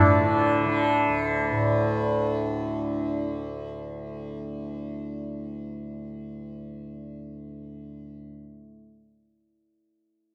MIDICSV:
0, 0, Header, 1, 3, 480
1, 0, Start_track
1, 0, Tempo, 418994
1, 11855, End_track
2, 0, Start_track
2, 0, Title_t, "Santur"
2, 0, Program_c, 0, 15
2, 0, Note_on_c, 0, 62, 93
2, 0, Note_on_c, 0, 64, 73
2, 3691, Note_off_c, 0, 64, 0
2, 4047, Note_off_c, 0, 62, 0
2, 11855, End_track
3, 0, Start_track
3, 0, Title_t, "Tanpura"
3, 0, Program_c, 1, 104
3, 0, Note_on_c, 1, 38, 71
3, 0, Note_on_c, 1, 45, 67
3, 0, Note_on_c, 1, 50, 71
3, 241, Note_off_c, 1, 50, 0
3, 241, Note_on_c, 1, 50, 68
3, 749, Note_off_c, 1, 50, 0
3, 749, Note_on_c, 1, 50, 70
3, 1242, Note_off_c, 1, 38, 0
3, 1246, Note_on_c, 1, 38, 67
3, 1735, Note_off_c, 1, 45, 0
3, 1735, Note_on_c, 1, 45, 70
3, 8940, Note_off_c, 1, 50, 0
3, 9437, Note_off_c, 1, 38, 0
3, 9926, Note_off_c, 1, 45, 0
3, 11855, End_track
0, 0, End_of_file